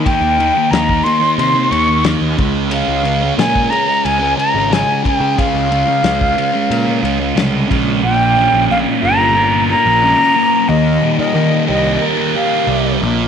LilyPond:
<<
  \new Staff \with { instrumentName = "Flute" } { \time 4/4 \key ees \mixolydian \tempo 4 = 90 g''4 bes''8 c'''8 c'''8 des'''8 r4 | f''4 aes''8 bes''8 aes''8 bes''8 aes''8 g''8 | f''2. r4 | g''4 f''8 bes''4 bes''4. |
ees''8. ees''8. ees''8 r8 f''4 r8 | }
  \new Staff \with { instrumentName = "Distorted electric guitar" } { \time 4/4 \key ees \mixolydian <ees bes ees'>8 <ees bes ees'>16 <bes ees'>16 <ees bes ees'>8 <ees bes ees'>16 <bes ees'>8 <bes ees'>16 <ees bes ees'>16 <bes ees'>16 <ees bes ees'>8 <des aes des'>8 | <des aes des'>8 <des aes des'>16 <aes des'>16 <des aes des'>8 <des aes des'>16 <aes des'>8 <aes des'>16 <des aes des'>16 <aes des'>16 <des aes des'>8 <des aes des'>8 | <des aes des'>8 <des aes des'>16 <aes des'>16 <des aes des'>8 <des aes des'>16 <aes des'>8 <aes des'>16 <des aes des'>16 <aes des'>16 <des aes des'>8 <des aes des'>8 | bes,8 des'8 bes8 f'8 bes'8 f'8 des'8 bes8 |
ees8 g8 bes8 g'8 bes'8 g'8 g8 bes,8 | }
  \new Staff \with { instrumentName = "Picked electric bass" } { \clef bass \time 4/4 \key ees \mixolydian r16 ees,8 r16 ees,8 r8 c8 ees,8. ees,16 des,8~ | des,16 des,8. bes,8 r8 des,8 r16 aes,,8 r8 des16 | r16 des,8 r16 des,8 r8 bes,8 des,8 c,8 bes,,8 | bes,,8. bes,,16 bes,,16 r16 g,,4~ g,,16 bes,,8 r8. |
ees,8 r16 ees16 ees16 r16 c,8 r4 c,8 bes,,8 | }
  \new DrumStaff \with { instrumentName = "Drums" } \drummode { \time 4/4 <bd cymr>8 cymr8 <cymr sn>16 bd16 cymr8 cymr8 cymr8 <cymr sn>8 <bd cymr>8 | cymr8 cymr8 <cymr sn>16 bd16 cymr8 cymr8 cymr8 <cymr sn>8 <bd cymr>8 | <bd cymr>8 cymr8 <cymr sn>16 bd16 cymr8 cymr8 cymr8 <cymr sn>8 <bd cymr>8 | r4 r4 r4 r4 |
r4 r4 r4 r4 | }
>>